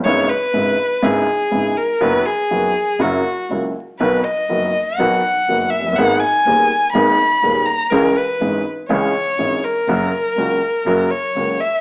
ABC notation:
X:1
M:4/4
L:1/16
Q:1/4=122
K:B
V:1 name="Violin"
c2 B6 G6 A2 | B2 G6 F4 z4 | B2 d6 f6 e2 | f2 g6 b6 a2 |
A2 B4 z2 c6 A2- | A8- A2 c4 e2 |]
V:2 name="Upright piano" clef=bass
[G,,,G,,C,G,B,E]2 z2 [G,,,G,,C,G,B,E]2 z2 [G,,,G,,C,G,B,E]2 z2 [G,,,G,,C,G,B,E]2 z2 | [F,,D,F,B,F]2 z2 [F,,D,F,B,F]2 z2 [F,,C,F,A,E]2 z2 [C,,C,F,A,E]2 z2 | [B,,,B,,D,F,B,F]2 z2 [F,,,F,,D,F,B,F]2 z2 [B,,,B,,D,F,B,F]2 z2 [F,,,F,,D,F,B,F]2 z/2 ^E,,,/2 F,,,/2 =G,,,/2 | [G,,,G,,D,A,B,G]2 z2 [D,,,D,,D,A,B,G]2 z2 [G,,,G,,D,A,B,G]2 z2 [D,,,D,,D,A,B,G]2 z2 |
[C,,C,E,G,CG]2 z2 [G,,,G,,E,G,CG]2 z2 [C,,C,E,G,CG]2 z2 [G,,,G,,E,G,CG]2 z2 | [F,,C,F,A,F]2 z2 [C,,C,F,A,F]2 z2 [F,,C,F,A,F]2 z2 [C,,C,F,A,F]2 z2 |]
V:3 name="Double bass" clef=bass
G,,,2 z2 G,,,2 z2 G,,,2 z2 G,,,2 z2 | F,,,2 z2 F,,,2 z2 F,,,2 z2 C,,2 z2 | B,,,2 z2 F,,,2 z2 B,,,2 z2 F,,,2 F,,,2 | G,,,2 z2 D,,2 z2 G,,,2 z2 D,,2 z2 |
C,,2 z2 G,,,2 z2 C,,2 z2 G,,,2 z2 | F,,,2 z2 C,,2 z2 F,,,2 z2 C,,2 z2 |]